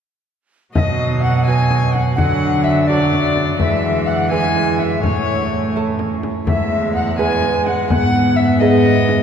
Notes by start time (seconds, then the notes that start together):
0.75 B2 F#3 D#5 E5, frame drum
0.80 D#5
1.22 F#5
1.46 F#4 B4 G#5
1.71 frame drum
1.93 F#5, frame drum
2.16 D3 F#3 F#5, frame drum
2.64 E5 F#5
2.69 E5
2.88 F#3 F#4 A4 D5
3.13 frame drum
3.36 frame drum
3.59 E3 G#3 E5, frame drum
4.06 F#5
4.31 G#3 B3 E4 G#4 G#5
4.56 frame drum
4.78 E5 F#5, frame drum
4.84 E5
5.03 A2 A3 C#5, frame drum
5.76 C#4 E4 A4
5.99 frame drum
6.23 frame drum
6.46 E2 G#3 E5, frame drum
6.95 F#5
7.17 G#3 B3 G#4 B4 G#5
7.42 frame drum
7.66 F#5, frame drum
7.89 G#2 B3 F#5, frame drum
8.36 E5
8.60 B3 G#4 B4 D#5
8.86 frame drum
9.09 frame drum